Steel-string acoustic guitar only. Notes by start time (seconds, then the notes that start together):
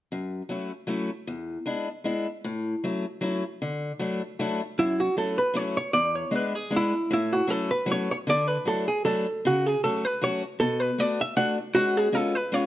0.12 F#2
0.49 F#3 A3 C#4 E4
0.87 F#3 A3 C#4 E4
1.27 E2
1.66 G#3 B3 D4 E4
2.04 G#3 B3 D4 E4
2.44 A2
2.84 F#3 A3 C#4 E4
3.21 F#3 A3 C#4 E4
3.62 D3
3.99 F#3 A3 D4 E4
4.39 F#3 A3 D4 E4
4.79 F#2
5.17 F#3 A3 C#4 E4
5.54 F#3 A3 C#4 E4
5.94 E2
6.31 G#3 B3 D4 E4
6.71 G#3 B3 D4 E4
7.11 A2
7.47 F#3 A3 C#4 E4
7.86 F#3 A3 C#4 E4
8.27 D3
8.65 F#3 A3 D4 E4
9.05 F#3 A3 D4 E4
9.45 C#3
9.84 F#3 A3 C#4 F#4
10.21 F#3 A3 C#4 F#4
10.61 B2
10.98 A3 B3 D4 F#4
11.37 A3 B3 D4 F#4
11.75 G#3 B3 C#4 F#4
12.12 G#3 B3 C#4 F4
12.52 G#3 B3 C#4 F4